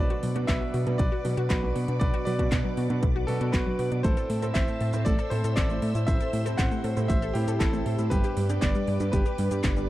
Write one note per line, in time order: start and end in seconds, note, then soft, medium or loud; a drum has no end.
0.00 0.33 B2 medium
0.00 0.33 F#3 medium
0.00 0.33 B3 medium
0.00 0.33 D4 medium
0.00 0.33 B4 medium
0.00 0.45 B4 medium
0.00 4.00 B4 medium
0.00 0.44 D5 loud
0.00 4.00 D5 medium
0.00 4.00 F#5 medium
0.00 4.00 D6 medium
0.10 0.21 F#4 loud
0.10 closed hi-hat soft
0.23 0.46 B2 medium
0.23 0.27 F#3 medium
0.23 open hi-hat loud
0.36 0.84 B2 medium
0.36 0.84 F#3 medium
0.36 0.84 B3 medium
0.36 0.84 D4 medium
0.36 0.43 F#4 loud
0.36 0.84 B4 loud
0.36 closed hi-hat medium
0.47 0.60 B1 medium
0.47 0.56 B3 medium
0.47 0.96 B4 medium
0.47 1.00 E5 loud
0.47 kick loud
0.47 clap loud
0.47 closed hi-hat medium
0.61 0.68 F#3 medium
0.74 0.85 B2 medium
0.74 0.78 F#4 medium
0.74 open hi-hat medium
0.86 0.99 B2 loud
0.86 0.98 B2 loud
0.86 0.99 F#3 loud
0.86 0.99 B3 medium
0.86 0.97 D4 medium
0.86 0.99 D4 loud
0.86 0.99 B4 loud
0.86 closed hi-hat medium
0.98 1.11 B1 medium
0.98 1.04 F#3 medium
0.98 1.47 B4 medium
0.98 1.46 D5 loud
0.98 kick loud
0.98 closed hi-hat medium
1.12 1.23 F#4 loud
1.25 1.60 B2 medium
1.25 1.36 B2 medium
1.25 1.29 F#3 medium
1.25 1.60 F#3 medium
1.25 1.60 B3 medium
1.25 1.60 D4 medium
1.25 1.60 B4 medium
1.25 open hi-hat loud
1.37 1.49 B2 medium
1.37 1.45 F#4 loud
1.37 closed hi-hat medium
1.49 1.73 B1 loud
1.49 1.57 B3 medium
1.49 1.98 F#4 medium
1.49 1.97 B4 medium
1.49 kick loud
1.49 clap loud
1.49 closed hi-hat medium
1.63 1.98 B2 medium
1.63 1.70 F#3 medium
1.63 1.98 F#3 medium
1.63 1.98 B3 medium
1.63 1.98 D4 medium
1.63 1.98 B4 medium
1.75 1.87 B2 medium
1.75 1.80 F#4 medium
1.75 open hi-hat medium
1.88 2.00 B2 loud
1.88 1.99 D4 medium
1.88 closed hi-hat medium
2.00 2.12 B1 medium
2.00 2.36 B2 medium
2.00 2.05 F#3 medium
2.00 2.36 F#3 medium
2.00 2.36 B3 medium
2.00 2.36 D4 medium
2.00 2.36 B4 medium
2.00 2.25 B4 medium
2.00 2.24 D5 loud
2.00 kick loud
2.00 closed hi-hat medium
2.14 2.25 F#4 loud
2.14 closed hi-hat soft
2.25 2.49 B2 medium
2.25 2.31 F#3 medium
2.25 3.24 B4 medium
2.25 3.31 D5 loud
2.25 open hi-hat loud
2.39 2.87 B2 loud
2.39 2.87 F#3 medium
2.39 2.87 B3 medium
2.39 2.87 D4 medium
2.39 2.46 F#4 loud
2.39 2.87 B4 loud
2.39 kick medium
2.39 closed hi-hat medium
2.52 2.63 B1 medium
2.52 2.59 B3 medium
2.52 kick loud
2.52 clap loud
2.52 closed hi-hat medium
2.65 2.72 F#3 medium
2.77 2.89 B2 medium
2.77 2.82 F#4 medium
2.77 open hi-hat medium
2.90 3.01 B2 loud
2.90 3.03 B2 loud
2.90 3.03 F#3 medium
2.90 3.03 B3 medium
2.90 3.03 D4 medium
2.90 3.01 D4 medium
2.90 3.03 B4 loud
2.90 closed hi-hat medium
3.03 3.25 B1 loud
3.03 3.07 F#3 medium
3.03 kick loud
3.03 closed hi-hat medium
3.16 3.26 F#4 loud
3.27 3.39 B2 medium
3.27 3.63 B2 medium
3.27 3.63 F#3 medium
3.27 3.33 F#3 medium
3.27 3.63 B3 medium
3.27 3.63 D4 medium
3.27 3.52 F#4 medium
3.27 3.51 A4 medium
3.27 3.63 B4 medium
3.27 open hi-hat loud
3.41 3.52 B2 medium
3.41 3.48 F#4 loud
3.41 closed hi-hat medium
3.52 3.65 B1 medium
3.52 3.61 B3 medium
3.52 4.01 F#4 medium
3.52 4.00 B4 loud
3.52 kick loud
3.52 clap loud
3.52 closed hi-hat medium
3.66 4.01 B2 medium
3.66 4.01 F#3 medium
3.66 3.74 F#3 medium
3.66 4.01 B3 medium
3.66 4.01 D4 medium
3.66 4.01 B4 medium
3.79 3.90 B2 medium
3.79 3.83 F#4 medium
3.79 open hi-hat medium
3.92 4.03 B2 medium
3.92 4.03 D4 medium
3.92 closed hi-hat medium
4.03 4.16 A1 loud
4.03 4.40 A2 medium
4.03 4.09 A3 medium
4.03 4.40 A3 medium
4.03 4.40 C4 medium
4.03 4.40 E4 medium
4.03 4.52 A4 medium
4.03 4.54 C5 loud
4.03 4.40 C5 medium
4.03 8.07 C5 medium
4.03 8.07 E5 medium
4.03 6.06 A5 medium
4.03 8.07 E6 medium
4.03 kick loud
4.03 closed hi-hat medium
4.03 cabasa medium
4.17 4.28 A4 loud
4.17 closed hi-hat soft
4.17 cabasa soft
4.30 4.52 A2 medium
4.30 4.34 A3 medium
4.30 open hi-hat loud
4.42 4.90 A2 loud
4.42 4.90 A3 medium
4.42 4.90 C4 medium
4.42 4.90 E4 medium
4.42 4.50 A4 loud
4.42 4.90 C5 loud
4.42 closed hi-hat soft
4.42 cabasa medium
4.54 4.67 A1 medium
4.54 4.63 C4 medium
4.54 5.03 C5 medium
4.54 5.02 E5 loud
4.54 kick loud
4.54 clap loud
4.54 closed hi-hat medium
4.54 cabasa soft
4.68 4.75 A3 medium
4.68 cabasa soft
4.80 4.92 A2 medium
4.80 4.85 A4 medium
4.80 open hi-hat medium
4.93 5.05 A2 loud
4.93 5.06 A2 loud
4.93 5.06 A3 medium
4.93 5.06 C4 loud
4.93 5.04 E4 medium
4.93 5.06 E4 medium
4.93 5.06 C5 loud
4.93 closed hi-hat medium
4.93 cabasa medium
5.05 5.17 A1 medium
5.05 5.10 A3 medium
5.05 5.30 A4 medium
5.05 5.29 D5 loud
5.05 kick loud
5.05 closed hi-hat medium
5.05 cabasa soft
5.19 5.30 A4 loud
5.19 cabasa soft
5.30 5.43 A2 medium
5.30 5.67 A2 medium
5.30 5.36 A3 medium
5.30 5.67 A3 medium
5.30 5.67 C4 medium
5.30 5.67 E4 medium
5.30 5.55 A4 medium
5.30 5.57 C5 loud
5.30 5.67 C5 medium
5.30 open hi-hat loud
5.44 5.55 A2 medium
5.44 5.51 A4 loud
5.44 closed hi-hat medium
5.44 cabasa medium
5.56 5.79 A1 loud
5.56 5.64 C4 medium
5.56 6.04 A4 medium
5.56 6.09 D5 loud
5.56 kick loud
5.56 clap loud
5.56 closed hi-hat medium
5.56 cabasa medium
5.70 6.05 A2 medium
5.70 5.77 A3 medium
5.70 6.05 A3 medium
5.70 6.05 C4 medium
5.70 6.05 E4 medium
5.70 6.05 C5 medium
5.70 cabasa soft
5.82 5.94 A2 medium
5.82 5.87 A4 medium
5.82 open hi-hat medium
5.95 6.06 A2 loud
5.95 6.06 E4 medium
5.95 closed hi-hat medium
5.95 cabasa medium
6.07 6.19 A1 loud
6.07 6.43 A2 medium
6.07 6.43 A3 medium
6.07 6.12 A3 medium
6.07 6.43 C4 medium
6.07 6.43 E4 medium
6.07 9.89 G4 medium
6.07 6.43 C5 medium
6.07 6.55 C5 medium
6.07 6.60 E5 loud
6.07 kick loud
6.07 closed hi-hat medium
6.07 cabasa medium
6.20 6.31 A4 loud
6.20 closed hi-hat soft
6.20 cabasa soft
6.33 6.56 A2 medium
6.33 6.38 A3 medium
6.33 open hi-hat loud
6.46 6.94 A2 loud
6.46 6.94 A3 medium
6.46 6.94 C4 medium
6.46 6.94 E4 medium
6.46 6.53 A4 loud
6.46 6.94 C5 loud
6.46 closed hi-hat soft
6.46 cabasa medium
6.57 6.70 A1 medium
6.57 6.66 C4 medium
6.57 7.06 C5 medium
6.57 7.10 F#5 loud
6.57 kick loud
6.57 clap loud
6.57 closed hi-hat medium
6.57 cabasa soft
6.71 6.79 A3 medium
6.71 cabasa soft
6.84 6.95 A2 medium
6.84 6.88 A4 medium
6.84 open hi-hat medium
6.97 7.10 A2 loud
6.97 7.08 A2 loud
6.97 7.10 A3 medium
6.97 7.10 C4 medium
6.97 7.10 E4 medium
6.97 7.08 E4 medium
6.97 7.10 C5 loud
6.97 closed hi-hat medium
6.97 cabasa medium
7.08 7.32 A1 loud
7.08 7.14 A3 medium
7.08 7.34 C5 medium
7.08 7.33 E5 loud
7.08 kick loud
7.08 closed hi-hat medium
7.08 cabasa medium
7.22 7.33 A4 loud
7.22 cabasa soft
7.34 7.70 A2 medium
7.34 7.46 A2 loud
7.34 7.70 A3 medium
7.34 7.39 A3 medium
7.34 7.70 C4 medium
7.34 7.70 E4 medium
7.34 7.59 E4 medium
7.34 7.60 G4 loud
7.34 7.70 C5 medium
7.34 open hi-hat loud
7.48 7.59 A2 loud
7.48 7.55 A4 loud
7.48 closed hi-hat soft
7.48 cabasa medium
7.59 7.83 A1 medium
7.59 7.68 C4 medium
7.59 8.08 E4 medium
7.59 8.12 A4 medium
7.59 kick loud
7.59 clap loud
7.59 closed hi-hat medium
7.59 cabasa medium
7.73 8.08 A2 medium
7.73 8.08 A3 medium
7.73 7.80 A3 medium
7.73 8.08 C4 medium
7.73 8.08 E4 medium
7.73 8.08 C5 medium
7.73 cabasa soft
7.86 7.97 A2 medium
7.86 7.90 A4 medium
7.86 open hi-hat medium
7.99 8.10 A2 loud
7.99 8.09 E4 medium
7.99 closed hi-hat medium
7.99 cabasa medium
8.10 8.23 G1 loud
8.10 8.46 G2 medium
8.10 8.46 G3 medium
8.10 8.16 G3 medium
8.10 8.46 B3 medium
8.10 8.46 D4 medium
8.10 8.59 G4 medium
8.10 8.62 B4 loud
8.10 8.46 B4 medium
8.10 9.89 B4 medium
8.10 9.89 D5 medium
8.10 9.89 D6 medium
8.10 kick loud
8.10 closed hi-hat medium
8.10 cabasa medium
8.24 8.35 G4 loud
8.24 closed hi-hat soft
8.24 cabasa soft
8.37 8.59 G2 medium
8.37 8.41 G3 medium
8.37 open hi-hat loud
8.49 8.97 G2 loud
8.49 8.97 G3 medium
8.49 8.97 B3 medium
8.49 8.97 D4 medium
8.49 8.57 G4 loud
8.49 8.97 B4 loud
8.49 closed hi-hat medium
8.49 cabasa medium
8.61 8.73 G1 medium
8.61 8.69 B3 medium
8.61 9.10 B4 medium
8.61 9.09 D5 loud
8.61 kick loud
8.61 clap loud
8.61 closed hi-hat medium
8.61 cabasa medium
8.75 8.82 G3 medium
8.75 cabasa soft
8.87 8.99 G2 medium
8.87 8.92 G4 medium
8.87 open hi-hat medium
9.00 9.13 G2 loud
9.00 9.12 G2 loud
9.00 9.13 G3 medium
9.00 9.13 B3 medium
9.00 9.13 D4 medium
9.00 9.11 D4 medium
9.00 9.13 B4 loud
9.00 closed hi-hat medium
9.00 cabasa medium
9.12 9.24 G1 medium
9.12 9.17 G3 medium
9.12 9.89 G4 medium
9.12 9.89 B4 medium
9.12 kick loud
9.12 closed hi-hat medium
9.12 cabasa medium
9.26 9.37 G4 loud
9.26 cabasa soft
9.38 9.50 G2 medium
9.38 9.73 G2 medium
9.38 9.73 G3 medium
9.38 9.43 G3 medium
9.38 9.74 B3 medium
9.38 9.73 D4 medium
9.38 9.73 B4 medium
9.38 open hi-hat loud
9.51 9.62 G2 medium
9.51 9.58 G4 loud
9.51 closed hi-hat medium
9.51 cabasa medium
9.64 9.86 G1 loud
9.64 9.71 B3 medium
9.64 kick loud
9.64 clap loud
9.64 closed hi-hat medium
9.64 cabasa medium
9.76 9.89 G2 medium
9.76 9.89 G3 medium
9.76 9.84 G3 medium
9.76 9.89 B3 medium
9.76 9.89 D4 medium
9.76 9.89 B4 medium
9.76 cabasa soft